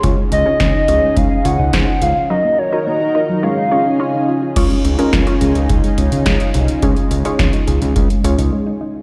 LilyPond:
<<
  \new Staff \with { instrumentName = "Soft synth lead" } { \time 4/4 \key des \major \tempo 4 = 106 r8 ees''4. f''8 ges''4 f''8 | ees''8 des''8 ees''4 f''4. r8 | r1 | r1 | }
  \new Staff \with { instrumentName = "Synth pluck" } { \time 4/4 \key des \major <des' f' aes' des''>8. <des' f' aes' des''>8. <des' f' aes' des''>8. r16 <des' f' aes' des''>8 <des' f' aes' c''>8. r16 | <ees' ges' bes' ees''>8. <ees' ges' bes' ees''>8. <ees' ges' bes' ees''>8 <des' f' aes' des''>8 <des' f' aes' des''>8 <des' f' aes' des''>8. r16 | <des' f' aes' des''>8. <des' f' aes' bes'>8 <des' f' aes' des''>4.~ <des' f' aes' des''>16 r4 | <des' f' aes' des''>8. <des' f' aes' des''>4. r16 <des' f' aes' des''>4~ <des' f' aes' des''>16 r16 | }
  \new Staff \with { instrumentName = "Analog synth pad" } { \time 4/4 \key des \major <des des' ees' aes'>1 | <ees ees' ges' bes'>2 <des des' aes'>2 | <des des' ees' f' aes'>1~ | <des des' ees' f' aes'>1 | }
  \new Staff \with { instrumentName = "Synth arpeggio sound" } { \time 4/4 \key des \major aes16 des'16 aes'16 ees'16 des'16 ees'16 f'16 aes16 aes16 des'16 r16 ees'16 des'16 ees'16 f'16 f'16 | ges16 bes16 ges'16 ees'16 bes16 ees'16 f'16 ges16 aes16 des'16 r16 ees'16 des'16 ees'16 f'16 f'16 | aes16 aes16 des'16 ees'16 aes16 ees'16 aes'16 des'16 aes16 aes16 des'16 ees'16 aes16 ees'16 ees'16 r16 | aes16 aes16 des'16 ees'16 aes16 ees'16 aes'16 des'16 aes16 aes16 des'16 ees'16 aes16 ees'16 ees'16 r16 | }
  \new Staff \with { instrumentName = "Analog synth bass" } { \clef bass \time 4/4 \key des \major des,16 r16 des,16 r16 des,16 r16 des,16 r16 des,16 r16 des,16 des,16 des,16 r16 des,16 r16 | r1 | des,16 r16 des,16 r16 des,16 r16 des,16 des,16 des,16 r16 des,16 des,16 des,16 r16 c,16 r16 | des,16 r16 des,16 r16 des,16 r16 des,16 des,16 des,16 r16 des,16 des,16 r4 | }
  \new DrumStaff \with { instrumentName = "Drums" } \drummode { \time 4/4 <hh bd>8 hh8 <hh bd sn>8 hh8 <hh bd>8 hh8 <hh bd sn>8 hh8 | r4 r4 r4 r4 | <cymc hh bd>16 hh16 hh16 hh16 <hh bd sn>16 hh16 hh16 hh16 <hh bd>16 hh16 hh16 hh16 <hh bd sn>16 hh16 hh16 hh16 | <hh bd>16 hh16 hh16 hh16 <hh bd sn>16 hh16 hh16 hh16 <hh bd>16 hh16 hh16 hh16 r4 | }
>>